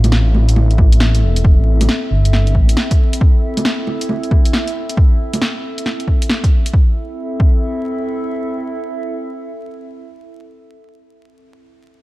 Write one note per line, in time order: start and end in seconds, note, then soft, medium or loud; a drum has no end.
0.00 1.24 A1 loud
0.00 6.69 C4 medium
0.00 6.69 E4 medium
0.00 6.69 A4 medium
0.00 6.69 E5 medium
0.00 closed hi-hat medium
0.00 low bongo soft
0.12 snare loud
0.34 low bongo soft
0.49 closed hi-hat medium
0.56 low bongo soft
0.71 closed hi-hat soft
0.78 kick loud
0.78 low bongo soft
0.92 closed hi-hat medium
1.00 snare loud
1.15 closed hi-hat soft
1.23 1.57 E1 loud
1.36 closed hi-hat medium
1.45 kick loud
1.59 1.88 A1 medium
1.81 closed hi-hat medium
1.81 low bongo soft
1.89 snare loud
2.11 2.54 G1 medium
2.25 closed hi-hat medium
2.33 snare medium
2.47 closed hi-hat soft
2.55 2.75 A1 medium
2.55 kick medium
2.69 closed hi-hat medium
2.77 snare loud
2.91 kick medium
2.91 closed hi-hat soft
3.13 closed hi-hat medium
3.21 kick loud
3.57 closed hi-hat medium
3.57 low bongo soft
3.65 snare loud
3.87 low bongo soft
4.01 closed hi-hat medium
4.09 low bongo soft
4.23 closed hi-hat soft
4.31 kick loud
4.31 low bongo soft
4.45 closed hi-hat medium
4.53 snare loud
4.68 closed hi-hat soft
4.90 closed hi-hat medium
4.97 kick loud
5.33 closed hi-hat soft
5.33 low bongo soft
5.42 snare medium
5.78 closed hi-hat soft
5.86 snare medium
6.00 closed hi-hat soft
6.08 kick medium
6.22 closed hi-hat soft
6.30 snare medium
6.44 kick loud
6.44 closed hi-hat soft
6.66 closed hi-hat soft
6.72 11.02 C4 medium
6.72 11.02 E4 medium
6.72 11.02 A4 medium
6.72 11.02 E5 medium
6.72 kick loud
7.40 kick loud